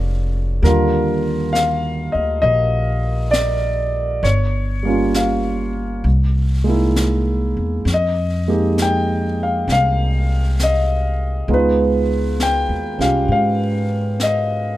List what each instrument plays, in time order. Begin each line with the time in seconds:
Already playing: upright bass F1, grand piano G#3 C4 D4 F4 G4
0.62 upright bass D#2, grand piano D3 G3 A#3 A#4, brush sweep, snare
0.67 grand piano F4
1.53 grand piano F5, snare, hi-hat pedal
2.12 upright bass D2, grand piano D#5
2.42 upright bass A#1, grand piano D#5, brush sweep
3.31 grand piano D5, snare, hi-hat pedal
4.23 upright bass G1, grand piano C#5, brush sweep, snare
4.83 grand piano G3 A#3 C#4
4.88 grand piano F4
5.14 grand piano F5, snare, hi-hat pedal
6.04 upright bass C2, brush sweep
6.64 grand piano G#3 A#3 D#4
6.69 grand piano E4
6.96 snare, hi-hat pedal
7.57 upright bass E2
7.85 upright bass F2, brush sweep, snare
7.94 grand piano D#5
8.48 grand piano G#3 A#3 D#4 G4
8.78 snare, hi-hat pedal
8.82 grand piano G5
9.43 grand piano F5
9.68 upright bass C2, brush sweep, snare
9.72 grand piano F5
10.60 grand piano D#5, snare, hi-hat pedal
11.48 upright bass C#2, grand piano G#3 B3 D#4 F4, brush sweep
11.54 grand piano B4
12.40 grand piano G5, snare, hi-hat pedal
12.69 upright bass D#2
12.98 upright bass C2, grand piano C#4 F4 G4 F5, snare
13.28 upright bass G#2, grand piano F5, brush sweep
14.20 grand piano D#5, snare, hi-hat pedal